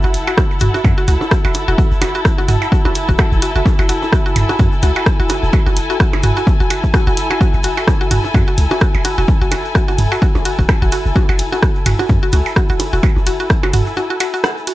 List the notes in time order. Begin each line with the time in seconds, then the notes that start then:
Already playing: E4 A4 F#5
0.03 F#1 F#4, shaker
0.14 closed hi-hat, shaker
0.27 F#4, percussion blips, shaker
0.37 F#4, kick, cross-stick, percussion blips, shaker
0.51 shaker
0.60 F#1 F#4, closed hi-hat, mid tom, shaker
0.74 F#4, percussion blips, shaker
0.84 F#2, kick, percussion blips, shaker
0.98 F#4, shaker
1.08 C#2 F#4, closed hi-hat, shaker
1.21 percussion blips, shaker
1.31 F#4, kick, cross-stick, shaker
1.45 F#1 F#4, percussion blips, shaker
1.54 closed hi-hat, percussion blips, shaker
1.68 E1 F#4, shaker
1.78 F#4, kick, shaker
1.92 F#1, shaker
2.01 F#4, closed hi-hat, percussion blips, shaker
2.15 F#4, shaker
2.25 kick, cross-stick, shaker
2.38 F#4, percussion blips, shaker
2.48 F#1 F#4, closed hi-hat, mid tom, shaker
2.62 percussion blips, shaker
2.72 F#4, kick, shaker
2.83 F#1 F#4 G#5, percussion blips, shaker
2.95 closed hi-hat, shaker
3.08 F#1 F#4, kick, shaker
3.19 F#4, kick, cross-stick, percussion blips, shaker
3.32 A1, shaker
3.42 F#4, closed hi-hat, shaker
3.55 F#1 F#4, shaker
3.66 kick, percussion blips, shaker
3.79 F#1 F#4, percussion blips, shaker
3.89 F#4, closed hi-hat, shaker
4.02 percussion blips, shaker
4.13 F#4, kick, cross-stick, shaker
4.26 F#4, shaker
4.36 F#1, closed hi-hat, mid tom, percussion blips, shaker
4.49 F#4, percussion blips, shaker
4.59 F#2 F#4, kick, shaker
4.72 shaker
4.83 C#2 F#4, closed hi-hat, percussion blips, shaker
4.96 F#4, percussion blips, shaker
5.06 kick, cross-stick, shaker
5.20 F#1 F#4, shaker
5.29 F#4, closed hi-hat, percussion blips, shaker
5.43 E1, shaker
5.53 F#4, kick, percussion blips, shaker
5.66 F#1 F#4, percussion blips, shaker
5.76 closed hi-hat, shaker
5.90 F#4, shaker
6.00 F#4, kick, cross-stick, shaker
6.13 percussion blips, shaker
6.23 F#1 F#4, closed hi-hat, mid tom, shaker
6.36 F#4, shaker
6.47 kick, percussion blips, shaker
6.60 F#1 F#4, shaker
6.70 F#4, closed hi-hat, percussion blips, shaker
6.84 kick, shaker
6.94 F#4, kick, cross-stick, percussion blips, shaker
7.07 F#1 F#4, shaker
7.17 closed hi-hat, shaker
7.30 F#4, percussion blips, shaker
7.41 F#4, kick, percussion blips, shaker
7.53 F#1, shaker
7.63 F#4, closed hi-hat, ride, shaker
7.77 F#4, percussion blips, shaker
7.87 kick, cross-stick, percussion blips, shaker
8.01 F#4, shaker
8.11 F#1 F#4, closed hi-hat, mid tom, ride, shaker
8.24 percussion blips, shaker
8.34 F#2 F#4, kick, percussion blips, shaker
8.48 F#4, shaker
8.58 C#2, closed hi-hat, ride, shaker
8.71 F#4, percussion blips, shaker
8.81 F#4, kick, cross-stick, shaker
8.94 F#1, percussion blips, shaker
9.05 F#4, closed hi-hat, ride, percussion blips, shaker
9.18 E1 F#4, shaker
9.28 kick, shaker
9.41 F#1 F#4, shaker
9.51 F#4, closed hi-hat, ride, percussion blips, shaker
9.65 shaker
9.75 F#4, kick, cross-stick, shaker
9.88 F#4, percussion blips, shaker
9.98 F#1, closed hi-hat, mid tom, ride, shaker
10.12 F#4, percussion blips, shaker
10.22 F#4, kick, shaker
10.35 F#1, percussion blips, shaker
10.45 F#4, closed hi-hat, ride, shaker
10.59 F#1 F#4, kick, shaker
10.69 kick, cross-stick, percussion blips, shaker
10.82 A1 F#4, shaker
10.92 F#4, closed hi-hat, ride, shaker
11.06 F#1, shaker
11.16 F#4, kick, percussion blips, shaker
11.29 F#1 F#4, percussion blips, shaker
11.39 closed hi-hat, ride, shaker
11.52 F#4, percussion blips, shaker
11.63 F#4, kick, cross-stick, shaker
11.75 shaker
11.86 F#1 F#4, closed hi-hat, mid tom, ride, percussion blips, shaker
11.99 F#4, percussion blips, shaker
12.09 F#2, kick, shaker
12.23 F#4, shaker
12.32 C#2 F#4, closed hi-hat, ride, percussion blips, shaker
12.46 percussion blips, shaker
12.56 F#4, kick, cross-stick, shaker
12.69 F#1 F#4, shaker
12.80 closed hi-hat, ride, percussion blips, shaker
12.93 E1 F#4, shaker
13.03 F#4, kick, percussion blips, shaker
13.16 F#1, percussion blips, shaker
13.26 F#4, closed hi-hat, ride, shaker
13.40 F#4, shaker
13.50 kick, cross-stick, shaker
13.63 F#4, percussion blips, shaker
13.73 F#1 F#4, closed hi-hat, mid tom, ride, shaker
13.86 shaker
13.97 F#4, percussion blips, shaker
14.10 F#4, shaker
14.20 F#4, closed hi-hat, ride, percussion blips, shaker
14.34 F#4, shaker
14.44 F#5, cross-stick, percussion blips, shaker
14.58 shaker
14.67 F#4, closed hi-hat, ride, shaker